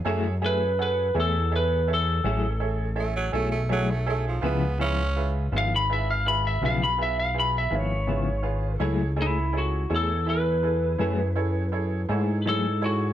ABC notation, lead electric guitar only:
X:1
M:12/8
L:1/16
Q:3/8=55
K:F#m
V:1 name="Lead electric guitar"
c2 B2 B2 A2 B2 A12 z2 | z6 ^e b =e ^e b =e ^e b =e ^e b =e c6 | z2 E2 F2 A2 B12 A2 F2 |]